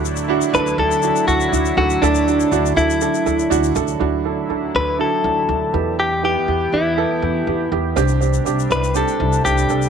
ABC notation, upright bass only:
X:1
M:4/4
L:1/16
Q:1/4=121
K:Dmix
V:1 name="Upright bass" clef=bass
D,,4 D,,2 D,,3 z D,,2 D,,2 D,,2 | D,,4 D,,2 D,,3 z D,,2 D,,2 D,,2 | D,,4 D,,2 D,,3 z D,,2 D,,2 E,,2- | E,,4 E,,2 E,,3 z E,,2 E,,2 E,,2 |
C,,4 C,,2 C,,3 z C,,2 C,,2 C,,2 |]